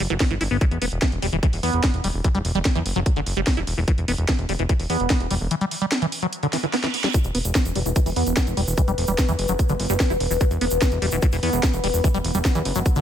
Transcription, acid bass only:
0.10 E3
0.20 E3
0.31 E3
0.41 E4
0.51 B3
0.61 E3
0.82 B3
1.02 E3
1.22 G3
1.33 E3
1.43 E3
1.63 B3
1.84 E3
2.04 G3
2.24 E3
2.35 G3
2.55 G3
2.75 E3
2.96 F#3
3.16 D3
3.37 G3
3.57 E4
3.78 E3
3.88 E3
4.08 B3
4.29 E3
4.49 G3
4.59 E3
4.69 E3
4.90 B3
5.10 E3
5.31 G3
5.51 E3
5.61 G3
5.82 G3
6.02 E3
6.22 F#3
6.43 D3
6.53 E3
6.63 E3
6.73 B3
6.84 E3
7.04 G3
7.14 E3
7.35 B3
7.75 G3
7.86 E3
7.96 E3
8.06 E3
8.16 B3
8.37 E3
8.57 G3
8.78 E3
8.88 G3
9.08 G3
9.29 E3
9.49 F#3
9.69 D3
9.90 G3
10.10 E4
10.31 E3
10.41 E3
10.61 B3
11.02 G3
11.12 E3
11.22 E3
11.33 E3
11.43 B3
11.63 E3
11.84 G3
12.04 E3
12.14 G3
12.35 G3
12.55 E3
12.76 F#3
12.96 D3

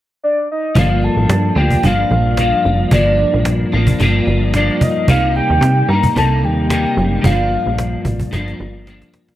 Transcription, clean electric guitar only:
0.75 G2 F3 A#3 D4
1.55 F3 A#3 D4
1.83 G2 F3 A#3 D4
2.38 G2 F3 A#3 D4
2.92 G2 F3 A#3 D4
3.72 F3 A#3 D4
3.99 G2 F3 A#3 D4
4.54 G2 F3 A#3 D4
5.09 C3 G3 A#3 D#4
5.89 A#3 D#4
5.93 G3
6.16 C3 G3 A#3
6.20 D#4
6.70 C3 G3 A#3 D#4
7.22 G2 F3
7.26 A#3 D4
8.31 G2 F3 A#3 D4
8.86 G2 F3 A#3 D4

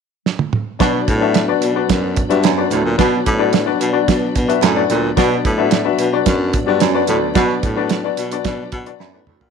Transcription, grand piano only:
0.79 D4 F#4 B4 D5
1.21 D4 F#4 B4 E5
1.48 D4 F#4 B4 D5
1.75 D4 F#4 B4 D5
2.29 D4 F#4 B4 E5
2.57 D4 F#4 B4 D5
2.98 D4 F#4 B4 D5
3.38 D4 F#4 B4 D5
3.66 D4 F#4 B4 D5
3.93 D4 F#4 B4 D5
4.48 D4 F#4 B4 E5
4.76 D4 F#4 B4 D5
5.16 D4 F#4 B4 D5
5.57 D4 F#4 B4 E5
5.84 D4 F#4 B4 E5
6.12 D4 F#4 B4 D5
6.66 D4 F#4 B4 D5
6.94 D4 F#4 B4 D5
7.35 D4 F#4 B4 D5
7.76 D4 F#4 B4 D5
8.04 D4 F#4 B4 D5
8.32 D4 F#4 B4 D5
8.74 F#5
8.86 D4 F#4 B4 D5
9.00 E5 B5
9.13 B4 D5
9.41 D5 F#5

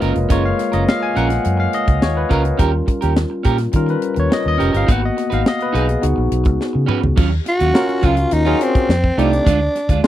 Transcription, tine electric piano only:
Already playing: G#3 A#3 F4 A#4 B4 C#5 D#5 F5
0.30 G#3 A#3 F4 C#5
0.45 F5
0.74 D#5
0.89 F5
1.03 G#5
1.17 F#5
1.60 F5
1.74 D#5
2.03 C#5
2.17 B4
2.32 A#4
2.60 G3 C#4 F4
3.74 G3 C#4 F4 A#4
3.90 B4
4.20 C#5
4.33 D#5
4.48 D#5
4.77 F5
4.88 A#3 B3 F#4 F#5
5.05 D#5
5.33 F5
5.48 D#5
5.62 B4
5.76 G#4
6.02 B3 D#4 F#4
7.74 C#4 F4 F#4 A#4
8.46 C#4 F4 F#4 G#4
9.18 A3 C4 D#4 G4
10.04 G#3 A#3

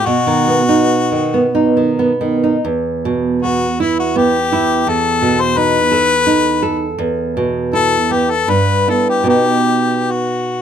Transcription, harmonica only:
0.06 F#4
3.42 F#4
3.80 E4
3.99 F#4
4.17 G4
4.88 A4
5.41 C5
5.58 B4
7.74 A4
8.13 G4
8.30 A4
8.50 B4
8.90 A4
9.09 G4
9.29 G4
10.11 F#4

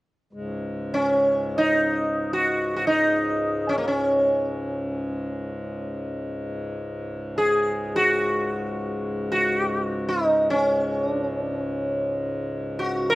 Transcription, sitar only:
0.94 C#4
1.58 D#4
2.33 F#4
2.76 F#4
2.87 D#4
3.69 C#4
3.78 A#3
3.88 C#4
7.38 G#4
7.96 F#4
9.32 F#4
10.09 D#4
10.50 C#4
11.08 D4
11.24 C#4
11.41 D4
11.57 C#4
12.79 F#4
13.10 A#4

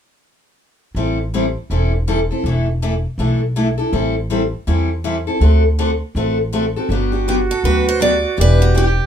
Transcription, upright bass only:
0.95 A1
1.70 E1
2.44 E1
3.18 B1
3.93 A1
4.67 E2
5.40 D2
6.15 A1
6.89 G1
7.63 D2
8.38 E1

